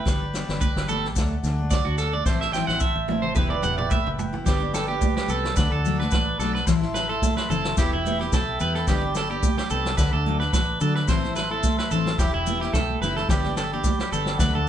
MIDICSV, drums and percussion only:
0, 0, Header, 1, 2, 480
1, 0, Start_track
1, 0, Key_signature, 1, "major"
1, 0, Tempo, 551471
1, 51, Time_signature, 4, 2, 24, 8
1, 12785, End_track
2, 0, Start_track
2, 0, Title_t, "Drums"
2, 48, Note_on_c, 9, 38, 68
2, 52, Note_on_c, 9, 36, 92
2, 65, Note_on_c, 9, 62, 26
2, 68, Note_on_c, 9, 70, 101
2, 135, Note_off_c, 9, 38, 0
2, 139, Note_off_c, 9, 36, 0
2, 152, Note_off_c, 9, 62, 0
2, 155, Note_off_c, 9, 70, 0
2, 294, Note_on_c, 9, 38, 70
2, 306, Note_on_c, 9, 70, 77
2, 381, Note_off_c, 9, 38, 0
2, 393, Note_off_c, 9, 70, 0
2, 423, Note_on_c, 9, 38, 73
2, 510, Note_off_c, 9, 38, 0
2, 531, Note_on_c, 9, 70, 100
2, 533, Note_on_c, 9, 36, 87
2, 535, Note_on_c, 9, 63, 77
2, 618, Note_off_c, 9, 70, 0
2, 620, Note_off_c, 9, 36, 0
2, 622, Note_off_c, 9, 63, 0
2, 665, Note_on_c, 9, 38, 71
2, 752, Note_off_c, 9, 38, 0
2, 770, Note_on_c, 9, 70, 79
2, 776, Note_on_c, 9, 63, 62
2, 857, Note_off_c, 9, 70, 0
2, 863, Note_off_c, 9, 63, 0
2, 912, Note_on_c, 9, 38, 28
2, 999, Note_off_c, 9, 38, 0
2, 1009, Note_on_c, 9, 70, 98
2, 1013, Note_on_c, 9, 36, 91
2, 1015, Note_on_c, 9, 62, 26
2, 1018, Note_on_c, 9, 38, 70
2, 1096, Note_off_c, 9, 70, 0
2, 1100, Note_off_c, 9, 36, 0
2, 1102, Note_off_c, 9, 62, 0
2, 1105, Note_off_c, 9, 38, 0
2, 1252, Note_on_c, 9, 70, 78
2, 1256, Note_on_c, 9, 38, 27
2, 1259, Note_on_c, 9, 62, 28
2, 1339, Note_off_c, 9, 70, 0
2, 1343, Note_off_c, 9, 38, 0
2, 1346, Note_off_c, 9, 62, 0
2, 1485, Note_on_c, 9, 70, 91
2, 1489, Note_on_c, 9, 63, 76
2, 1490, Note_on_c, 9, 36, 97
2, 1492, Note_on_c, 9, 38, 76
2, 1572, Note_off_c, 9, 70, 0
2, 1576, Note_off_c, 9, 63, 0
2, 1577, Note_off_c, 9, 36, 0
2, 1579, Note_off_c, 9, 38, 0
2, 1723, Note_on_c, 9, 70, 64
2, 1724, Note_on_c, 9, 62, 32
2, 1731, Note_on_c, 9, 38, 26
2, 1810, Note_off_c, 9, 70, 0
2, 1811, Note_off_c, 9, 62, 0
2, 1818, Note_off_c, 9, 38, 0
2, 1965, Note_on_c, 9, 38, 51
2, 1966, Note_on_c, 9, 36, 98
2, 1968, Note_on_c, 9, 70, 90
2, 1969, Note_on_c, 9, 62, 32
2, 2052, Note_off_c, 9, 38, 0
2, 2053, Note_off_c, 9, 36, 0
2, 2055, Note_off_c, 9, 70, 0
2, 2056, Note_off_c, 9, 62, 0
2, 2097, Note_on_c, 9, 38, 46
2, 2184, Note_off_c, 9, 38, 0
2, 2207, Note_on_c, 9, 70, 67
2, 2210, Note_on_c, 9, 38, 52
2, 2213, Note_on_c, 9, 64, 66
2, 2294, Note_off_c, 9, 70, 0
2, 2297, Note_off_c, 9, 38, 0
2, 2300, Note_off_c, 9, 64, 0
2, 2335, Note_on_c, 9, 38, 46
2, 2422, Note_off_c, 9, 38, 0
2, 2436, Note_on_c, 9, 70, 94
2, 2445, Note_on_c, 9, 36, 80
2, 2447, Note_on_c, 9, 48, 55
2, 2523, Note_off_c, 9, 70, 0
2, 2532, Note_off_c, 9, 36, 0
2, 2534, Note_off_c, 9, 48, 0
2, 2572, Note_on_c, 9, 48, 48
2, 2659, Note_off_c, 9, 48, 0
2, 2685, Note_on_c, 9, 48, 66
2, 2686, Note_on_c, 9, 63, 91
2, 2772, Note_off_c, 9, 48, 0
2, 2773, Note_off_c, 9, 63, 0
2, 2813, Note_on_c, 9, 47, 55
2, 2900, Note_off_c, 9, 47, 0
2, 2919, Note_on_c, 9, 70, 90
2, 2925, Note_on_c, 9, 36, 96
2, 2927, Note_on_c, 9, 47, 71
2, 2927, Note_on_c, 9, 62, 29
2, 2927, Note_on_c, 9, 64, 66
2, 3006, Note_off_c, 9, 70, 0
2, 3012, Note_off_c, 9, 36, 0
2, 3014, Note_off_c, 9, 47, 0
2, 3014, Note_off_c, 9, 62, 0
2, 3014, Note_off_c, 9, 64, 0
2, 3050, Note_on_c, 9, 47, 56
2, 3137, Note_off_c, 9, 47, 0
2, 3161, Note_on_c, 9, 70, 72
2, 3163, Note_on_c, 9, 45, 68
2, 3167, Note_on_c, 9, 62, 33
2, 3248, Note_off_c, 9, 70, 0
2, 3250, Note_off_c, 9, 45, 0
2, 3254, Note_off_c, 9, 62, 0
2, 3293, Note_on_c, 9, 45, 67
2, 3380, Note_off_c, 9, 45, 0
2, 3400, Note_on_c, 9, 70, 92
2, 3404, Note_on_c, 9, 36, 94
2, 3406, Note_on_c, 9, 45, 74
2, 3410, Note_on_c, 9, 63, 76
2, 3487, Note_off_c, 9, 70, 0
2, 3491, Note_off_c, 9, 36, 0
2, 3493, Note_off_c, 9, 45, 0
2, 3497, Note_off_c, 9, 63, 0
2, 3539, Note_on_c, 9, 43, 63
2, 3626, Note_off_c, 9, 43, 0
2, 3646, Note_on_c, 9, 43, 81
2, 3646, Note_on_c, 9, 70, 66
2, 3652, Note_on_c, 9, 62, 27
2, 3652, Note_on_c, 9, 63, 73
2, 3733, Note_off_c, 9, 43, 0
2, 3733, Note_off_c, 9, 70, 0
2, 3739, Note_off_c, 9, 62, 0
2, 3739, Note_off_c, 9, 63, 0
2, 3774, Note_on_c, 9, 43, 66
2, 3861, Note_off_c, 9, 43, 0
2, 3883, Note_on_c, 9, 70, 104
2, 3885, Note_on_c, 9, 36, 98
2, 3885, Note_on_c, 9, 38, 75
2, 3891, Note_on_c, 9, 62, 35
2, 3970, Note_off_c, 9, 70, 0
2, 3972, Note_off_c, 9, 36, 0
2, 3972, Note_off_c, 9, 38, 0
2, 3978, Note_off_c, 9, 62, 0
2, 4122, Note_on_c, 9, 38, 73
2, 4125, Note_on_c, 9, 62, 36
2, 4127, Note_on_c, 9, 70, 85
2, 4209, Note_off_c, 9, 38, 0
2, 4212, Note_off_c, 9, 62, 0
2, 4214, Note_off_c, 9, 70, 0
2, 4364, Note_on_c, 9, 70, 103
2, 4365, Note_on_c, 9, 36, 90
2, 4374, Note_on_c, 9, 63, 93
2, 4451, Note_off_c, 9, 70, 0
2, 4452, Note_off_c, 9, 36, 0
2, 4461, Note_off_c, 9, 63, 0
2, 4496, Note_on_c, 9, 38, 72
2, 4583, Note_off_c, 9, 38, 0
2, 4604, Note_on_c, 9, 70, 77
2, 4691, Note_off_c, 9, 70, 0
2, 4738, Note_on_c, 9, 38, 72
2, 4825, Note_off_c, 9, 38, 0
2, 4841, Note_on_c, 9, 70, 98
2, 4848, Note_on_c, 9, 36, 99
2, 4852, Note_on_c, 9, 38, 70
2, 4855, Note_on_c, 9, 62, 31
2, 4928, Note_off_c, 9, 70, 0
2, 4935, Note_off_c, 9, 36, 0
2, 4939, Note_off_c, 9, 38, 0
2, 4942, Note_off_c, 9, 62, 0
2, 5094, Note_on_c, 9, 70, 77
2, 5181, Note_off_c, 9, 70, 0
2, 5225, Note_on_c, 9, 38, 27
2, 5312, Note_off_c, 9, 38, 0
2, 5318, Note_on_c, 9, 70, 98
2, 5330, Note_on_c, 9, 36, 95
2, 5332, Note_on_c, 9, 63, 83
2, 5334, Note_on_c, 9, 38, 74
2, 5405, Note_off_c, 9, 70, 0
2, 5417, Note_off_c, 9, 36, 0
2, 5419, Note_off_c, 9, 63, 0
2, 5421, Note_off_c, 9, 38, 0
2, 5572, Note_on_c, 9, 38, 30
2, 5572, Note_on_c, 9, 70, 74
2, 5573, Note_on_c, 9, 62, 33
2, 5659, Note_off_c, 9, 38, 0
2, 5659, Note_off_c, 9, 70, 0
2, 5660, Note_off_c, 9, 62, 0
2, 5700, Note_on_c, 9, 38, 26
2, 5787, Note_off_c, 9, 38, 0
2, 5805, Note_on_c, 9, 38, 81
2, 5807, Note_on_c, 9, 36, 101
2, 5808, Note_on_c, 9, 70, 103
2, 5811, Note_on_c, 9, 62, 31
2, 5892, Note_off_c, 9, 38, 0
2, 5894, Note_off_c, 9, 36, 0
2, 5895, Note_off_c, 9, 70, 0
2, 5898, Note_off_c, 9, 62, 0
2, 5935, Note_on_c, 9, 38, 26
2, 6022, Note_off_c, 9, 38, 0
2, 6044, Note_on_c, 9, 38, 66
2, 6052, Note_on_c, 9, 62, 31
2, 6054, Note_on_c, 9, 70, 77
2, 6131, Note_off_c, 9, 38, 0
2, 6139, Note_off_c, 9, 62, 0
2, 6141, Note_off_c, 9, 70, 0
2, 6283, Note_on_c, 9, 38, 24
2, 6286, Note_on_c, 9, 36, 88
2, 6291, Note_on_c, 9, 63, 94
2, 6292, Note_on_c, 9, 70, 103
2, 6370, Note_off_c, 9, 38, 0
2, 6373, Note_off_c, 9, 36, 0
2, 6378, Note_off_c, 9, 63, 0
2, 6379, Note_off_c, 9, 70, 0
2, 6411, Note_on_c, 9, 38, 69
2, 6498, Note_off_c, 9, 38, 0
2, 6531, Note_on_c, 9, 64, 72
2, 6536, Note_on_c, 9, 70, 81
2, 6618, Note_off_c, 9, 64, 0
2, 6623, Note_off_c, 9, 70, 0
2, 6650, Note_on_c, 9, 38, 77
2, 6737, Note_off_c, 9, 38, 0
2, 6764, Note_on_c, 9, 70, 91
2, 6765, Note_on_c, 9, 38, 70
2, 6767, Note_on_c, 9, 36, 101
2, 6775, Note_on_c, 9, 62, 31
2, 6851, Note_off_c, 9, 70, 0
2, 6852, Note_off_c, 9, 38, 0
2, 6854, Note_off_c, 9, 36, 0
2, 6862, Note_off_c, 9, 62, 0
2, 7019, Note_on_c, 9, 70, 86
2, 7020, Note_on_c, 9, 63, 85
2, 7106, Note_off_c, 9, 70, 0
2, 7107, Note_off_c, 9, 63, 0
2, 7135, Note_on_c, 9, 38, 26
2, 7222, Note_off_c, 9, 38, 0
2, 7244, Note_on_c, 9, 38, 72
2, 7245, Note_on_c, 9, 70, 91
2, 7247, Note_on_c, 9, 36, 98
2, 7251, Note_on_c, 9, 63, 86
2, 7251, Note_on_c, 9, 64, 77
2, 7331, Note_off_c, 9, 38, 0
2, 7332, Note_off_c, 9, 70, 0
2, 7334, Note_off_c, 9, 36, 0
2, 7338, Note_off_c, 9, 63, 0
2, 7338, Note_off_c, 9, 64, 0
2, 7483, Note_on_c, 9, 70, 72
2, 7570, Note_off_c, 9, 70, 0
2, 7610, Note_on_c, 9, 38, 27
2, 7697, Note_off_c, 9, 38, 0
2, 7724, Note_on_c, 9, 38, 77
2, 7724, Note_on_c, 9, 70, 107
2, 7725, Note_on_c, 9, 36, 98
2, 7735, Note_on_c, 9, 62, 32
2, 7811, Note_off_c, 9, 38, 0
2, 7811, Note_off_c, 9, 70, 0
2, 7812, Note_off_c, 9, 36, 0
2, 7822, Note_off_c, 9, 62, 0
2, 7961, Note_on_c, 9, 70, 85
2, 7964, Note_on_c, 9, 38, 75
2, 7985, Note_on_c, 9, 62, 33
2, 8048, Note_off_c, 9, 70, 0
2, 8051, Note_off_c, 9, 38, 0
2, 8072, Note_off_c, 9, 62, 0
2, 8206, Note_on_c, 9, 36, 99
2, 8209, Note_on_c, 9, 70, 103
2, 8212, Note_on_c, 9, 63, 98
2, 8293, Note_off_c, 9, 36, 0
2, 8296, Note_off_c, 9, 70, 0
2, 8299, Note_off_c, 9, 63, 0
2, 8332, Note_on_c, 9, 38, 71
2, 8419, Note_off_c, 9, 38, 0
2, 8444, Note_on_c, 9, 70, 80
2, 8531, Note_off_c, 9, 70, 0
2, 8575, Note_on_c, 9, 38, 74
2, 8662, Note_off_c, 9, 38, 0
2, 8683, Note_on_c, 9, 38, 78
2, 8686, Note_on_c, 9, 36, 98
2, 8689, Note_on_c, 9, 70, 109
2, 8694, Note_on_c, 9, 62, 31
2, 8770, Note_off_c, 9, 38, 0
2, 8773, Note_off_c, 9, 36, 0
2, 8776, Note_off_c, 9, 70, 0
2, 8781, Note_off_c, 9, 62, 0
2, 8933, Note_on_c, 9, 63, 80
2, 9020, Note_off_c, 9, 63, 0
2, 9054, Note_on_c, 9, 38, 27
2, 9141, Note_off_c, 9, 38, 0
2, 9165, Note_on_c, 9, 38, 79
2, 9167, Note_on_c, 9, 36, 98
2, 9170, Note_on_c, 9, 70, 106
2, 9176, Note_on_c, 9, 63, 83
2, 9252, Note_off_c, 9, 38, 0
2, 9254, Note_off_c, 9, 36, 0
2, 9257, Note_off_c, 9, 70, 0
2, 9263, Note_off_c, 9, 63, 0
2, 9406, Note_on_c, 9, 70, 84
2, 9418, Note_on_c, 9, 62, 29
2, 9493, Note_off_c, 9, 70, 0
2, 9505, Note_off_c, 9, 62, 0
2, 9533, Note_on_c, 9, 38, 28
2, 9620, Note_off_c, 9, 38, 0
2, 9644, Note_on_c, 9, 70, 100
2, 9645, Note_on_c, 9, 38, 72
2, 9648, Note_on_c, 9, 36, 102
2, 9655, Note_on_c, 9, 62, 29
2, 9731, Note_off_c, 9, 70, 0
2, 9732, Note_off_c, 9, 38, 0
2, 9735, Note_off_c, 9, 36, 0
2, 9742, Note_off_c, 9, 62, 0
2, 9778, Note_on_c, 9, 38, 27
2, 9865, Note_off_c, 9, 38, 0
2, 9885, Note_on_c, 9, 70, 81
2, 9892, Note_on_c, 9, 38, 70
2, 9897, Note_on_c, 9, 62, 30
2, 9972, Note_off_c, 9, 70, 0
2, 9979, Note_off_c, 9, 38, 0
2, 9984, Note_off_c, 9, 62, 0
2, 10125, Note_on_c, 9, 70, 106
2, 10128, Note_on_c, 9, 36, 91
2, 10129, Note_on_c, 9, 38, 26
2, 10132, Note_on_c, 9, 63, 84
2, 10212, Note_off_c, 9, 70, 0
2, 10215, Note_off_c, 9, 36, 0
2, 10216, Note_off_c, 9, 38, 0
2, 10220, Note_off_c, 9, 63, 0
2, 10256, Note_on_c, 9, 38, 72
2, 10343, Note_off_c, 9, 38, 0
2, 10367, Note_on_c, 9, 70, 83
2, 10381, Note_on_c, 9, 64, 69
2, 10454, Note_off_c, 9, 70, 0
2, 10468, Note_off_c, 9, 64, 0
2, 10497, Note_on_c, 9, 38, 71
2, 10584, Note_off_c, 9, 38, 0
2, 10604, Note_on_c, 9, 38, 78
2, 10607, Note_on_c, 9, 36, 93
2, 10612, Note_on_c, 9, 70, 100
2, 10619, Note_on_c, 9, 62, 29
2, 10691, Note_off_c, 9, 38, 0
2, 10694, Note_off_c, 9, 36, 0
2, 10699, Note_off_c, 9, 70, 0
2, 10707, Note_off_c, 9, 62, 0
2, 10850, Note_on_c, 9, 70, 87
2, 10855, Note_on_c, 9, 63, 77
2, 10937, Note_off_c, 9, 70, 0
2, 10942, Note_off_c, 9, 63, 0
2, 10977, Note_on_c, 9, 38, 27
2, 11065, Note_off_c, 9, 38, 0
2, 11084, Note_on_c, 9, 38, 79
2, 11086, Note_on_c, 9, 36, 100
2, 11094, Note_on_c, 9, 70, 104
2, 11097, Note_on_c, 9, 63, 77
2, 11097, Note_on_c, 9, 64, 77
2, 11171, Note_off_c, 9, 38, 0
2, 11173, Note_off_c, 9, 36, 0
2, 11181, Note_off_c, 9, 70, 0
2, 11184, Note_off_c, 9, 63, 0
2, 11184, Note_off_c, 9, 64, 0
2, 11232, Note_on_c, 9, 63, 63
2, 11319, Note_off_c, 9, 63, 0
2, 11329, Note_on_c, 9, 38, 30
2, 11338, Note_on_c, 9, 70, 77
2, 11343, Note_on_c, 9, 64, 69
2, 11416, Note_off_c, 9, 38, 0
2, 11425, Note_off_c, 9, 70, 0
2, 11430, Note_off_c, 9, 64, 0
2, 11455, Note_on_c, 9, 38, 26
2, 11467, Note_on_c, 9, 64, 74
2, 11542, Note_off_c, 9, 38, 0
2, 11554, Note_off_c, 9, 64, 0
2, 11564, Note_on_c, 9, 38, 76
2, 11566, Note_on_c, 9, 36, 102
2, 11581, Note_on_c, 9, 70, 108
2, 11651, Note_off_c, 9, 38, 0
2, 11653, Note_off_c, 9, 36, 0
2, 11668, Note_off_c, 9, 70, 0
2, 11694, Note_on_c, 9, 38, 26
2, 11781, Note_off_c, 9, 38, 0
2, 11801, Note_on_c, 9, 38, 72
2, 11813, Note_on_c, 9, 70, 79
2, 11824, Note_on_c, 9, 62, 34
2, 11889, Note_off_c, 9, 38, 0
2, 11900, Note_off_c, 9, 70, 0
2, 11911, Note_off_c, 9, 62, 0
2, 12043, Note_on_c, 9, 38, 25
2, 12046, Note_on_c, 9, 36, 86
2, 12046, Note_on_c, 9, 70, 99
2, 12059, Note_on_c, 9, 63, 94
2, 12130, Note_off_c, 9, 38, 0
2, 12133, Note_off_c, 9, 36, 0
2, 12133, Note_off_c, 9, 70, 0
2, 12146, Note_off_c, 9, 63, 0
2, 12177, Note_on_c, 9, 38, 70
2, 12264, Note_off_c, 9, 38, 0
2, 12299, Note_on_c, 9, 70, 81
2, 12386, Note_off_c, 9, 70, 0
2, 12411, Note_on_c, 9, 38, 70
2, 12498, Note_off_c, 9, 38, 0
2, 12523, Note_on_c, 9, 38, 77
2, 12527, Note_on_c, 9, 36, 97
2, 12533, Note_on_c, 9, 70, 104
2, 12539, Note_on_c, 9, 62, 30
2, 12611, Note_off_c, 9, 38, 0
2, 12614, Note_off_c, 9, 36, 0
2, 12620, Note_off_c, 9, 70, 0
2, 12626, Note_off_c, 9, 62, 0
2, 12785, End_track
0, 0, End_of_file